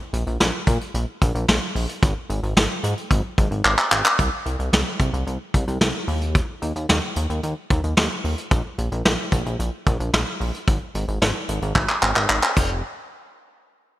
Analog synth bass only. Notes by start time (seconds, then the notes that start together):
0.13 A#1
0.27 A#1
0.40 A#1
0.67 A#2
0.94 A#1
1.22 A#1
1.35 A#1
1.48 A#1
1.75 A#1
2.03 G#1
2.30 G#1
2.43 G#1
2.57 G#1
2.84 G#2
3.11 G#1
3.38 G#1
3.51 G#1
3.65 G#1
3.92 G#1
4.19 C2
4.46 C2
4.59 C2
4.73 C2
5.00 C2
5.13 C2
5.27 C2
5.54 C2
5.68 C2
5.81 C2
6.08 D#2
6.62 D#2
6.76 D#2
6.89 D#2
7.16 D#2
7.30 D#2
7.43 D#2
7.70 D#2
7.84 D#2
7.97 D#2
8.24 D#2
8.51 A#1
8.78 A#1
8.92 A#1
9.05 A#1
9.32 A#1
9.46 A#1
9.59 A#1
9.87 A#1
10.00 A#1
10.13 A#1
10.40 A#1
10.68 G#1
10.95 G#1
11.08 G#1
11.21 G#1
11.49 G#1
11.62 G#1
11.75 G#1
12.03 G#1
12.16 G#1
12.30 G#1
12.57 F1